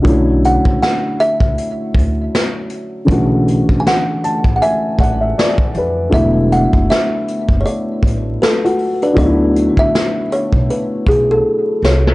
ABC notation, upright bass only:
X:1
M:4/4
L:1/16
Q:"Swing 16ths" 1/4=79
K:Bm
V:1 name="Upright bass" clef=bass
B,,,3 C,, z3 C,, z2 D,,2 z4 | B,,,3 B,,, z3 A,,, z2 A,,,2 z2 ^E,,2 | E,,,3 F,,, z3 F,,, z2 A,,,2 z4 | D,,3 D,, z3 B,,, z2 B,,,2 z2 =C,,2 |]